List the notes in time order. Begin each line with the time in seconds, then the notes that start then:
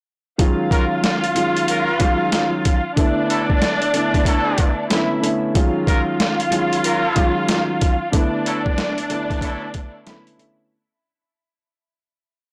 0.38 D#3 F#3 G#3 C#4 F4 F5, kick, closed hi-hat
0.71 F#3 F4 A#4, kick, closed hi-hat
1.04 snare, closed hi-hat
1.24 closed hi-hat
1.35 D#3 F#3 G#3 C#4 F4, closed hi-hat
1.57 closed hi-hat
1.68 F#3 F4 A#4, closed hi-hat
1.99 D#3 F#3 G#3 C#4 F4, kick, closed hi-hat
2.32 snare, closed hi-hat
2.65 kick, closed hi-hat
2.96 D3 A3 B3 D4 E4 D5, kick, closed hi-hat
3.30 F#3 E4 A4, closed hi-hat
3.50 kick
3.62 snare, closed hi-hat
3.82 closed hi-hat
3.93 D3 A3 B3 D4 E4, closed hi-hat
4.14 kick, closed hi-hat
4.25 F#3 E4 A4, kick, closed hi-hat
4.58 kick, closed hi-hat
4.90 D3 A3 B3 C#4 E4 E5, snare, closed hi-hat
5.22 D3 A3 B3 C#4 E4, closed hi-hat
5.54 D#3 F#3 G#3 C#4 F4 F5, kick, closed hi-hat
5.87 F#3 F4 A#4, kick, closed hi-hat
6.20 snare, closed hi-hat
6.40 closed hi-hat
6.51 D#3 F#3 G#3 C#4 F4, closed hi-hat
6.73 closed hi-hat
6.84 F#3 F4 A#4, closed hi-hat
7.15 D#3 F#3 G#3 C#4 F4, kick, closed hi-hat
7.48 snare, closed hi-hat
7.81 kick, closed hi-hat
8.12 D3 A3 B3 D4 E4 D5, kick, closed hi-hat
8.46 F#3 E4 A4, closed hi-hat
8.66 kick
8.78 snare, closed hi-hat
8.98 closed hi-hat
9.09 D3 A3 B3 D4 E4, closed hi-hat
9.30 kick, closed hi-hat
9.41 F#3 E4 A4, kick, closed hi-hat
9.74 kick, closed hi-hat
10.06 D3 A3 B3 C#4 E4 E5, snare, closed hi-hat
10.27 closed hi-hat
10.38 D3 A3 B3 C#4 E4, closed hi-hat